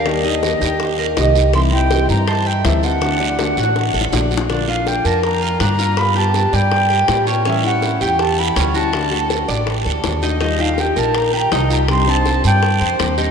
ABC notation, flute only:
X:1
M:4/4
L:1/8
Q:1/4=162
K:Bb
V:1 name="Flute"
e6 z2 | c' g2 b a g =e ^f- | ^f6 z2 | d f g a b2 b2 |
=b a2 g4 z | =e ^f2 g a =b2 a- | a3 z4 z | e f g a b b b b |
c' a2 g4 z |]